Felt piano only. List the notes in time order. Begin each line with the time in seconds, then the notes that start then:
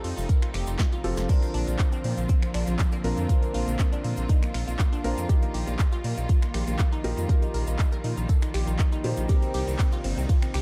Already playing: C4 F4 G4 A4
1.04 C4 F4 G4 A4
1.29 C4 D4 F4 A#4
3.04 C4 D4 F4 A#4
3.29 C4 D4 F4 A#4
5.04 C4 D4 F4 A#4
5.29 D#4 F4 G4 A#4
7.04 D#4 F4 G4 A#4
7.29 D#4 F4 G4 A#4
9.04 D#4 F4 G4 C5
9.29 C4 D#4 G4 A#4